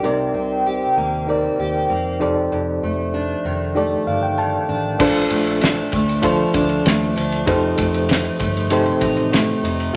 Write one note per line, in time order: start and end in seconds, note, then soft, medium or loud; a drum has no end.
0.00 0.28 C2 medium
0.00 2.27 C3 medium
0.00 0.37 A#3 medium
0.00 0.99 D#4 medium
0.00 0.66 G4 medium
0.00 0.99 G4 medium
0.04 0.99 A#4 medium
0.04 1.00 D5 medium
0.34 0.84 C2 medium
0.34 1.28 C4 medium
0.66 1.59 G4 medium
0.97 1.47 D#2 medium
0.97 1.88 A#3 medium
1.27 3.14 C4 medium
1.27 2.19 D#4 medium
1.27 2.19 G4 medium
1.27 2.21 A#4 medium
1.27 2.21 D5 medium
1.59 1.84 D#2 medium
1.59 2.55 G4 medium
1.90 2.22 F2 medium
1.90 2.27 A#3 medium
2.20 2.46 F1 medium
2.20 2.51 F2 medium
2.20 3.20 D#4 medium
2.20 3.20 G4 medium
2.20 3.20 A4 medium
2.20 3.21 D5 medium
2.52 2.77 F1 loud
2.52 5.00 F2 medium
2.83 3.32 F1 medium
2.83 3.75 A3 soft
3.14 4.07 D4 medium
3.45 3.95 F1 medium
3.45 4.36 D#3 medium
3.75 5.30 A3 medium
3.75 4.70 D#4 medium
3.75 4.71 G4 medium
3.75 4.71 A4 medium
3.75 4.72 D5 medium
4.07 4.57 G1 medium
4.07 4.68 D4 medium
4.07 4.21 F5 medium
4.23 4.37 G5 medium
4.38 5.06 D#3 medium
4.38 4.96 A5 medium
4.69 4.94 A1 medium
4.69 5.00 D4 medium
4.99 5.25 A#1 loud
4.99 7.47 A#2 medium
4.99 5.94 D4 medium
4.99 5.61 D4 medium
4.99 5.95 F4 medium
4.99 5.95 A4 medium
4.99 5.95 C5 medium
4.99 kick loud
4.99 crash loud
5.30 5.80 A#1 loud
5.30 5.93 A3 medium
5.30 ride medium
5.47 ride soft
5.61 6.53 D4 medium
5.61 snare loud
5.61 ride medium
5.92 6.42 D2 medium
5.92 6.85 A3 medium
5.92 kick loud
5.92 ride medium
6.09 ride soft
6.22 8.12 F3 medium
6.22 7.18 D4 medium
6.22 7.18 F4 medium
6.22 7.18 A4 medium
6.22 7.19 C5 medium
6.22 kick medium
6.22 ride medium
6.54 6.79 D2 medium
6.54 7.14 D4 medium
6.54 kick loud
6.54 ride medium
6.69 ride soft
6.85 7.10 D#2 medium
6.85 7.77 A3 medium
6.85 snare loud
6.85 ride medium
7.16 7.41 D2 loud
7.16 7.47 D4 medium
7.16 ride medium
7.32 ride soft
7.46 7.72 F1 loud
7.46 9.94 F2 medium
7.46 8.41 D#4 medium
7.46 8.08 D#4 medium
7.46 8.42 G4 medium
7.46 8.42 A4 medium
7.46 8.43 C5 medium
7.46 kick loud
7.46 ride medium
7.77 8.28 F1 loud
7.77 8.38 A3 medium
7.77 kick medium
7.77 ride medium
7.94 ride soft
8.09 8.99 D#4 medium
8.09 snare loud
8.09 ride medium
8.25 ride soft
8.39 8.89 G1 medium
8.39 9.31 A3 medium
8.39 kick loud
8.39 ride medium
8.57 ride soft
8.70 9.96 C3 medium
8.70 9.65 D#4 medium
8.70 9.66 G4 medium
8.70 9.66 A4 medium
8.70 9.66 C5 loud
8.70 ride medium
8.86 ride soft
9.01 9.51 A1 medium
9.01 9.62 D#4 medium
9.01 kick loud
9.01 ride medium
9.17 ride soft
9.32 9.96 A3 medium
9.32 snare loud
9.32 ride medium
9.63 9.88 F1 loud
9.63 9.94 D#4 medium
9.63 ride medium
9.80 ride soft